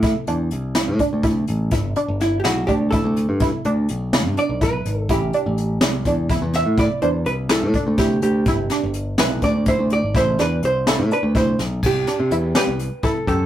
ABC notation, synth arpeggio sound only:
X:1
M:7/8
L:1/8
Q:1/4=124
K:Ador
V:1 name="Synth arpeggio sound"
E D2 E D E2 | E D2 E D E2 | E D2 E D E2 | E D2 E D E2 |
E D2 E D E2 | E D2 E D E2 | E D2 E D E2 | z D E G2 E G |]